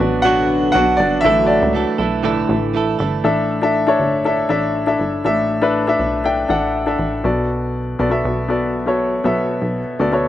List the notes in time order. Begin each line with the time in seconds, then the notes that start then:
Already playing: F#3 B3 D4 F#4 B4 D5
0.00 A1 B3 D4 F#4
0.22 B2 F#3 B3 D4 F#4 F#5
0.26 D3 D4 F#4
0.72 B1 F#3 B3 D4 F#4 F#5
0.76 F#4
0.97 G1 D4 D5
1.21 A2 D3 F#3 A3 D4 E4 E5
1.25 A1 E3 A3 E4 F#4 A4
1.46 D4 D5
1.62 C#2
1.73 E3 A3 E4 A4
1.98 B1 E3 A3 E4 A4
2.23 A2 D3 E3 A3 D4 E4 A4
2.49 A1
2.74 E3 A3 E4 A4
2.99 G1 E3 A3 E4 A4
3.24 A1 A2 D4 E4 A4 E5
3.62 D4 E4 A4 E5
3.87 D4 E4 A4 C#5
3.99 G1
4.25 D4 E4 A4 E5
4.49 A1 D4 E4 A4 E5
4.86 D4 E4 A4 E5
5.00 G1
5.24 A1 A2 D4 E4 A4 E5
5.62 D4 E4 A4 B4
5.87 D4 E4 A4 E5
5.99 B1
6.24 D4 E4 A4 G5
6.48 A1 D4 E4 A4 F#5
6.86 D4 E4 A4 E5
6.99 A1
7.24 B1 B2 B3 F#4 A4 D5
7.99 B1 B3 F#4 A4 D5
8.10 B3 F#4 A4 E5
8.25 B1
8.48 B3 F#4 A4 D5
8.86 B3 F#4 A4 C#5
9.24 B1 B2 B3 F#4 A4 E5
9.62 B1
9.99 D2 B3 F#4 A4 D5
10.12 B3 F#4 A4 C#5